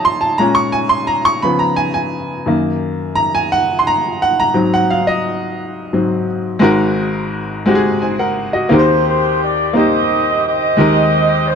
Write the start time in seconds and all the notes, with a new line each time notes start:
Already playing: F3 A3 D#4 C#5 D#5 A5 A#5
0.05 C6
0.21 A5
0.38 A#2 G#3 C#4 A#5
0.55 C#6
0.72 G#5
0.89 C6
1.07 A#5
1.25 C#6
1.42 C#3 F3 B3 B5
1.59 A#5
1.76 G#5
1.94 G#5
2.46 F#2 D#3 A#3
3.15 A#5
3.35 G#5
3.52 F#5
3.79 C6
3.87 A#5
4.22 F#5
4.40 A#5
4.54 G#2 F#3 C4
4.74 F#5
4.90 F5
5.07 D#5
5.93 G#2 F#3 C4
6.59 G#1 G#2 G#3 C4 F#4 A#4
7.66 G#3 C4 F#4 G4
7.75 G#4
8.02 C5 G#5
8.19 A#4 F#5
8.53 F#4 D#5
8.69 D#2 D#3 A#3 C4 D#4 G4 A#4 C5
8.79 C5
9.07 C5
9.42 D5
9.73 A#3 C4 D#4 G4 C5 D#5
10.46 G4 C5 D#5
10.77 D#2 D#3 G#3 C4 D#4 G4 A#4
11.48 C5